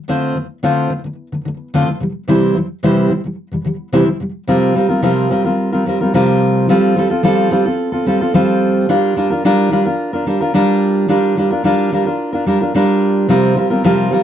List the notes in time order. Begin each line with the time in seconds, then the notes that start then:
0.08 D3 A3 C4 F4 C5
0.35 D3 A3
0.63 D3 A3 C4 F4 C5
0.90 D3 A3
1.04 D3 A3
1.32 D3 A3
1.45 D3 A3
1.74 D3 A3 C4 F4 C5
1.87 D3 A3
2.00 C3 E3 G3
2.28 C3 E3 G3 C4 E4 C5
2.55 C3 E3 G3
2.83 C3 E3 G3 C4 E4 C5
3.10 C3 E3 G3
3.24 C3 E3 G3
3.52 C3 E3 G3
3.64 C3 E3 G3
3.92 C3 E3 G3 C4 E4 C5
4.06 C3 E3 G3
4.20 C3 E3 G3
4.47 C3 F3 G3 C4 F4 A#4
4.75 G3 C4 F4 A#4
4.89 G3 C4 F4 A#4
5.02 C3 F3 G3 C4 F4 A#4
5.30 G3 C4 F4 A#4
5.44 G3 C4 F4 A#4
5.72 G3 C4 F4 A#4
5.86 G3 C4 F4 A#4
6.01 G3 C4 F4 A#4
6.14 C3 F3 G3 C4 F4 A#4
6.69 F3 G3 C4 F4 A4
6.96 G3 C4 F4 A4
7.10 C4 F4 A4
7.23 F3 G3 C4 F4 A4
7.51 G3 C4 F4 A4
7.66 C4 F4 A4
7.92 C4 F4 A4
8.06 G3 C4 F4 A4
8.21 C4 F4 A4
8.34 F3 G3 C4 F4 A4
8.89 G3 D4 F4 A#4
9.16 G3 D4 F4 A#4
9.30 D4 F4 A#4
9.45 G3 D4 F4 A#4
9.71 G3 D4 F4 A#4
9.85 D4 F4 A#4
10.13 D4 F4 A#4
10.26 G3 D4 F4 A#4
10.40 D4 F4 A#4
10.54 G3 D4 F4 A#4
11.08 G3 D4 F4 A#4
11.37 G3 D4 F4 A#4
11.50 D4 F4 A#4
11.64 G3 D4 F4 A#4
11.92 G3 D4 F4 A#4
12.05 D4 F4 A#4
12.33 D4 F4 A#4
12.46 G3 D4 F4 A#4
12.60 D4 F4 A#4
12.74 G3 D4 F4 A#4
13.28 C3 F3 G3 C4 F4 A#4
13.56 G3 C4 F4 A#4
13.70 G3 C4 F4 A#4
13.84 C3 F3 G3 C4 F4 A#4
14.11 G3 C4 F4 A#4